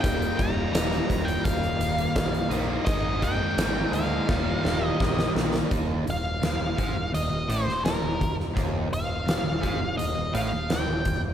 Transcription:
0.01 0.30 D#1 loud
0.01 2.49 D#2 medium
0.01 2.49 A#2 medium
0.01 2.50 D#3 medium
0.01 2.50 G3 loud
0.01 2.51 A#3 loud
0.01 2.50 D#4 loud
0.01 0.39 G5 loud
0.01 kick loud
0.01 closed hi-hat loud
0.05 2.86 A#3 medium
0.05 2.85 D#4 medium
0.05 2.85 G4 medium
0.05 2.85 A#4 medium
0.22 closed hi-hat medium
0.37 0.65 D#1 medium
0.37 0.72 A#5 loud
0.37 kick medium
0.37 closed hi-hat medium
0.73 0.99 D#1 medium
0.73 1.29 A#5 loud
0.73 snare loud
0.73 closed hi-hat loud
0.93 closed hi-hat soft
1.10 1.36 D#1 medium
1.10 kick medium
1.10 closed hi-hat medium
1.25 1.44 G5 medium
1.25 closed hi-hat soft
1.44 1.71 D#1 medium
1.44 2.51 F5 medium
1.44 kick loud
1.44 closed hi-hat loud
1.64 closed hi-hat soft
1.78 2.05 D#1 medium
1.78 closed hi-hat medium
1.98 closed hi-hat soft
2.15 2.42 A#1 medium
2.15 kick medium
2.15 snare loud
2.15 closed hi-hat medium
2.34 closed hi-hat soft
2.50 2.77 A#1 medium
2.50 2.86 D#2 medium
2.50 2.84 A#2 medium
2.50 2.85 D#3 medium
2.50 2.85 G3 medium
2.50 2.87 A#3 medium
2.50 2.88 D#4 medium
2.50 closed hi-hat medium
2.85 3.39 G#1 medium
2.85 4.26 G#2 medium
2.85 4.26 D#3 medium
2.85 4.27 G#3 loud
2.85 4.27 A#3 medium
2.85 4.28 C4 medium
2.85 4.28 D#4 loud
2.85 4.28 D#4 medium
2.85 4.29 G#4 medium
2.85 4.28 A#4 medium
2.85 3.23 D#5 loud
2.85 kick loud
2.85 closed hi-hat medium
3.22 3.94 G5 loud
3.22 kick medium
3.22 closed hi-hat medium
3.57 3.84 G#1 medium
3.57 snare loud
3.57 closed hi-hat loud
3.92 4.18 D2 medium
3.92 4.87 F5 medium
3.92 closed hi-hat medium
4.27 4.55 D#1 medium
4.27 5.68 D#2 loud
4.27 5.68 A#2 loud
4.27 5.69 D#3 medium
4.27 5.69 G3 loud
4.27 5.69 A#3 medium
4.27 5.70 D#4 loud
4.27 5.70 D#4 medium
4.27 5.70 F4 medium
4.27 5.70 G4 medium
4.27 5.71 A#4 medium
4.27 kick loud
4.27 snare medium
4.64 4.90 D#1 medium
4.64 snare medium
4.87 5.32 D#5 medium
5.00 5.26 A#1 loud
5.00 kick medium
5.00 snare medium
5.19 snare medium
5.35 5.61 A#1 medium
5.35 snare medium
5.54 snare medium
5.70 6.04 D#1 medium
5.70 6.05 D#2 loud
5.70 kick medium
5.70 closed hi-hat medium
6.07 6.40 D#1 medium
6.07 6.35 D#2 medium
6.07 7.11 F5 loud
6.07 closed hi-hat medium
6.42 6.59 D#1 medium
6.42 6.59 D#2 medium
6.42 snare loud
6.42 closed hi-hat medium
6.60 6.77 D#1 medium
6.60 6.78 D#2 medium
6.77 6.95 G#1 medium
6.77 6.94 G#2 loud
6.77 kick medium
6.77 closed hi-hat medium
6.95 7.12 D#1 medium
6.95 7.11 D#2 medium
7.12 7.30 D#1 medium
7.12 7.29 D#2 medium
7.12 7.47 D#5 medium
7.12 closed hi-hat medium
7.30 7.47 D#1 medium
7.30 7.48 D#2 medium
7.48 7.65 A1 medium
7.48 7.66 A2 medium
7.48 7.85 C5 medium
7.48 closed hi-hat medium
7.66 7.83 D#1 medium
7.66 7.84 D#2 medium
7.66 snare soft
7.84 8.01 D#1 medium
7.84 8.02 D#2 medium
7.84 8.35 A#4 medium
7.84 snare loud
7.84 closed hi-hat medium
8.02 8.19 D#1 medium
8.02 8.19 D#2 medium
8.20 8.54 D#1 medium
8.20 8.49 D#2 medium
8.20 kick medium
8.20 closed hi-hat soft
8.40 snare soft
8.55 8.89 D#1 medium
8.55 8.90 D#2 medium
8.55 kick loud
8.55 closed hi-hat medium
8.91 9.25 D#1 medium
8.91 9.20 D#2 medium
8.91 9.97 F5 medium
8.91 closed hi-hat medium
9.26 9.43 D#1 medium
9.26 9.43 D#2 medium
9.26 snare loud
9.26 closed hi-hat medium
9.44 9.62 D#1 medium
9.44 9.62 D#2 medium
9.61 9.80 G#1 medium
9.61 9.79 G#2 loud
9.61 kick medium
9.61 closed hi-hat medium
9.80 9.97 D#1 medium
9.80 9.97 D#2 medium
9.98 10.15 D#1 medium
9.98 10.14 D#2 medium
9.98 10.34 D#5 medium
9.98 closed hi-hat medium
10.16 10.33 D#1 medium
10.16 10.34 D#2 medium
10.33 10.50 A1 medium
10.33 10.50 A2 medium
10.33 10.71 F5 loud
10.33 closed hi-hat medium
10.51 10.68 D#1 medium
10.51 10.68 D#2 medium
10.69 10.87 D#1 medium
10.69 10.86 D#2 medium
10.69 11.20 G5 medium
10.69 snare loud
10.69 closed hi-hat medium
10.87 11.04 D#1 medium
10.87 11.04 D#2 medium
11.05 11.34 D#1 medium
11.05 11.34 D#2 medium
11.05 kick medium
11.05 closed hi-hat medium

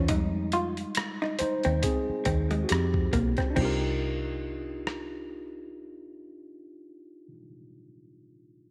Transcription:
0.00 0.10 C#4 medium
0.00 0.11 D#4 medium
0.00 0.10 F4 medium
0.00 0.11 A#4 medium
0.00 0.11 C5 medium
0.00 0.11 C#5 medium
0.08 0.83 F2 medium
0.08 1.35 G3 medium
0.08 1.36 G#3 soft
0.08 0.30 D#4 medium
0.08 1.36 D#4 medium
0.08 kick loud
0.08 closed hi-hat medium
0.52 0.74 F4 medium
0.52 closed hi-hat soft
0.77 closed hi-hat soft
0.95 cross-stick medium
0.95 closed hi-hat medium
1.22 1.37 D#4 medium
1.22 cross-stick soft
1.39 1.81 D#4 medium
1.39 1.79 C5 medium
1.39 muted hollow-body jazz guitar stroke soft
1.39 muted fingered electric bass stroke soft
1.39 closed hi-hat medium
1.63 1.81 D#2 medium
1.63 1.80 C4 medium
1.63 closed hi-hat soft
1.82 2.61 C4 medium
1.82 2.60 G#4 medium
1.82 muted hollow-body jazz guitar stroke soft
1.82 kick medium
1.82 closed hi-hat medium
2.09 muted fingered electric bass stroke soft
2.25 2.63 D#2 medium
2.25 2.47 C4 medium
2.25 kick medium
2.25 closed hi-hat medium
2.51 2.67 G#3 medium
2.51 closed hi-hat soft
2.64 2.70 F#4 soft
2.69 3.07 F2 medium
2.69 3.35 C4 medium
2.69 3.34 G4 medium
2.69 muted hollow-body jazz guitar stroke soft
2.69 cross-stick medium
2.69 closed hi-hat medium
2.94 kick medium
3.13 3.35 B1 medium
3.13 3.34 A#3 medium
3.13 kick medium
3.13 closed hi-hat soft
3.37 3.54 C4 medium
3.37 kick medium
3.37 cross-stick soft
3.37 closed hi-hat soft
3.50 7.26 D4 medium
3.50 7.30 D#4 medium
3.56 7.33 C2 medium
3.56 3.82 C4 medium
3.56 7.34 F4 medium
3.56 kick medium
3.56 crash medium
3.62 7.38 G4 medium
3.62 7.41 A#4 medium
4.87 cross-stick medium

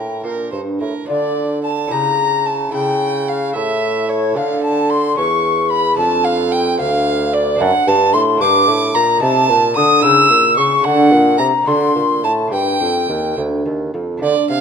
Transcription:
0.00 0.20 A2 medium
0.00 0.23 A2 medium
0.00 0.18 A#4 medium
0.00 0.22 G5 medium
0.23 0.49 A#2 medium
0.23 0.52 A#2 medium
0.23 0.77 A#3 soft
0.23 0.77 D4 soft
0.23 1.05 G4 soft
0.23 0.50 A#4 medium
0.52 0.80 G2 medium
0.52 0.78 G2 medium
0.52 0.60 C5 medium
0.80 1.06 A2 soft
0.80 0.93 A2 medium
0.80 1.08 A#4 medium
1.05 1.87 A3 soft
1.05 1.88 F4 medium
1.05 1.60 D5 loud
1.05 1.60 D5 medium
1.09 1.88 D3 medium
1.09 1.94 D3 medium
1.64 1.70 A5 medium
1.64 1.93 A5 medium
1.87 2.69 C#4 medium
1.87 2.69 E4 medium
1.87 2.70 G4 medium
1.91 2.70 C#3 medium
1.91 2.73 C#3 medium
1.91 2.48 A#5 loud
1.91 2.47 A#5 medium
2.46 2.73 A5 medium
2.46 2.73 A5 loud
2.69 4.30 A3 medium
2.69 4.31 E4 medium
2.69 4.32 A4 medium
2.73 3.53 C#3 medium
2.73 3.51 C#3 medium
2.73 3.27 G5 loud
2.73 3.30 G5 medium
3.28 3.54 F5 medium
3.28 3.58 F5 loud
3.55 4.32 A2 medium
3.55 4.37 A2 medium
3.55 4.10 E5 medium
3.55 4.08 E5 medium
4.09 4.38 C#5 medium
4.09 4.36 C#5 loud
4.32 5.17 D3 loud
4.32 5.13 A3 medium
4.32 5.14 D4 medium
4.32 5.14 A4 medium
4.36 5.13 D3 medium
4.36 4.64 F5 medium
4.36 4.62 F5 loud
4.63 4.92 A5 loud
4.63 4.91 A5 medium
4.90 5.17 C6 loud
4.90 5.19 C6 loud
5.15 6.00 E2 medium
5.15 5.94 E2 medium
5.15 5.94 C#4 medium
5.15 5.95 C#5 medium
5.15 5.72 C#6 loud
5.15 5.70 C#6 medium
5.70 5.97 B5 loud
5.70 5.97 B5 medium
5.94 7.54 A3 medium
5.94 7.55 D4 medium
5.94 7.55 A4 medium
5.94 6.26 A5 loud
5.98 6.80 F2 loud
5.98 6.75 F2 medium
6.24 6.54 F5 loud
6.24 6.51 F5 loud
6.51 6.81 G5 loud
6.51 6.79 G5 loud
6.78 7.60 D2 loud
6.78 7.56 D2 medium
6.78 7.35 F5 loud
7.33 7.62 D5 loud
7.33 7.61 D5 loud
7.56 7.84 C4 medium
7.56 8.37 D4 medium
7.56 8.38 A4 medium
7.56 7.89 F#5 loud
7.60 7.72 F#2 loud
7.60 7.84 F#2 medium
7.60 7.89 F#5 loud
7.87 8.15 G2 loud
7.87 8.11 G2 medium
7.87 8.13 A5 loud
7.87 8.15 A5 loud
8.13 8.42 A2 loud
8.13 8.38 A2 medium
8.13 8.21 C6 loud
8.13 8.43 C6 loud
8.37 8.69 G2 loud
8.37 8.65 A#3 medium
8.37 8.66 D4 medium
8.37 9.19 G4 medium
8.37 8.96 D6 loud
8.41 8.66 G2 medium
8.41 8.70 D6 loud
8.68 8.95 A2 loud
8.68 8.92 A2 medium
8.94 9.19 A#2 medium
8.94 9.21 A#2 medium
8.94 9.22 A#5 loud
8.94 9.21 A#5 loud
9.17 9.99 A3 medium
9.17 9.99 D#4 medium
9.17 10.00 A4 medium
9.17 9.78 A5 loud
9.22 9.46 C3 medium
9.22 9.51 C3 loud
9.22 9.75 A5 loud
9.49 9.76 A#2 loud
9.49 9.74 A#2 medium
9.76 10.00 D3 medium
9.76 10.05 D3 loud
9.76 10.04 D#6 loud
9.76 10.03 D#6 loud
10.00 10.28 C#3 loud
10.00 10.32 C#3 loud
10.00 10.81 E4 medium
10.00 10.81 A#4 medium
10.00 10.56 E6 loud
10.04 10.59 E6 loud
10.30 10.55 A#2 medium
10.30 10.59 A#2 medium
10.57 10.86 C#3 medium
10.57 10.82 C#3 medium
10.57 10.85 C#6 loud
10.57 10.87 C#6 loud
10.80 11.09 A3 medium
10.80 11.63 D4 medium
10.80 11.64 A4 medium
10.80 11.37 F#5 loud
10.85 11.09 D3 medium
10.85 11.13 D3 loud
10.85 11.41 F#5 loud
11.11 11.38 A#2 loud
11.11 11.37 A#2 medium
11.38 11.52 C3 medium
11.38 11.65 C3 medium
11.38 11.46 A#5 loud
11.38 11.69 A#5 loud
11.63 11.93 A3 medium
11.63 12.49 F#4 medium
11.63 12.23 C6 medium
11.68 11.93 D3 medium
11.68 11.95 D3 loud
11.68 12.26 C6 loud
11.95 12.26 A#2 medium
11.95 12.22 A#2 medium
12.24 12.50 A2 medium
12.24 12.53 A2 medium
12.24 12.32 A5 medium
12.24 12.52 A5 loud
12.47 12.78 A#3 medium
12.47 12.78 D4 medium
12.47 14.17 G4 medium
12.52 12.78 G2 medium
12.52 12.80 G2 loud
12.52 13.36 G5 loud
12.80 13.06 F2 medium
12.80 13.09 F2 medium
13.08 13.34 D#2 medium
13.08 13.37 D#2 medium
13.37 13.62 D2 medium
13.37 13.65 D2 medium
13.65 13.93 D#2 medium
13.65 13.91 D#2 medium
13.94 14.21 F2 medium
13.94 14.19 F2 medium
14.17 14.46 A3 medium
14.17 14.61 D4 medium
14.17 14.61 F4 medium
14.22 14.47 D3 medium
14.22 14.34 D3 medium
14.22 14.49 D5 loud
14.49 14.61 C3 medium
14.49 14.61 F5 loud

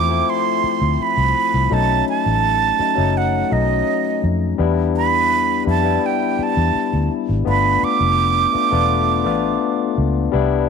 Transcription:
0.00 0.21 E2 medium
0.00 0.08 F3 loud
0.00 0.09 A3 loud
0.00 0.10 C4 loud
0.00 0.11 E4 loud
0.00 0.31 D6 loud
0.08 1.36 F3 medium
0.08 1.36 A3 medium
0.08 1.37 C4 medium
0.08 1.37 E4 medium
0.30 1.04 C6 loud
0.64 muted fingered electric bass stroke soft
0.82 0.96 D2 medium
1.00 1.75 B5 loud
1.00 muted fingered electric bass stroke soft
1.17 1.32 C2 medium
1.54 1.69 C2 medium
1.70 2.01 B1 loud
1.70 2.66 F#3 medium
1.70 2.67 A3 medium
1.70 2.67 C#4 medium
1.70 2.67 D#4 loud
1.70 2.08 A5 loud
2.09 3.19 A5 loud
2.26 2.70 A1 medium
2.79 2.94 F#3 medium
2.79 2.95 A3 medium
2.79 2.96 C#4 medium
2.79 2.96 D#4 medium
2.79 muted fingered electric bass stroke soft
2.96 3.42 F#1 medium
2.96 3.44 F#3 medium
2.96 3.45 A3 medium
2.96 3.45 C#4 medium
2.96 3.45 D#4 medium
3.17 3.54 F#5 medium
3.50 3.81 B1 medium
3.50 4.46 F#3 medium
3.50 4.46 A3 medium
3.50 4.47 C#4 medium
3.50 4.47 D#4 medium
3.50 4.24 D#5 medium
4.24 4.53 F2 medium
4.58 5.63 E2 loud
4.58 5.54 G3 loud
4.58 5.54 B3 loud
4.58 5.55 D4 loud
4.58 5.55 E4 loud
4.97 5.64 B5 loud
5.65 5.97 F2 loud
5.65 5.81 G3 medium
5.65 5.82 B3 medium
5.65 5.83 D4 medium
5.65 5.83 E4 medium
5.70 6.08 A5 loud
5.82 7.11 G3 medium
5.82 7.11 B3 medium
5.82 7.12 D4 medium
5.82 7.12 E4 medium
6.06 6.45 G5 medium
6.39 muted fingered electric bass stroke soft
6.43 7.13 A5 loud
6.57 6.72 E2 loud
6.75 muted fingered electric bass stroke soft
6.93 7.08 D2 medium
7.29 7.44 G#1 medium
7.45 7.76 G1 loud
7.45 8.41 A3 medium
7.45 8.41 B3 medium
7.45 8.42 D4 medium
7.45 8.42 F4 loud
7.49 7.86 B5 loud
7.83 9.99 D6 loud
7.83 muted fingered electric bass stroke medium
8.00 8.45 F1 loud
8.53 8.69 A3 medium
8.53 8.70 B3 medium
8.53 8.70 D4 medium
8.53 8.71 F4 medium
8.53 muted fingered electric bass stroke soft
8.71 9.26 E1 loud
8.71 9.19 A3 medium
8.71 9.19 B3 medium
8.71 9.20 D4 medium
8.71 9.20 F4 loud
9.24 9.56 A1 medium
9.24 10.20 A3 medium
9.24 10.21 B3 medium
9.24 10.21 D4 medium
9.24 10.21 F4 medium
9.98 10.27 C#2 medium
10.32 10.69 C2 loud
10.32 10.69 G3 loud
10.32 10.69 B3 medium
10.32 10.69 D4 loud
10.32 10.69 E4 loud

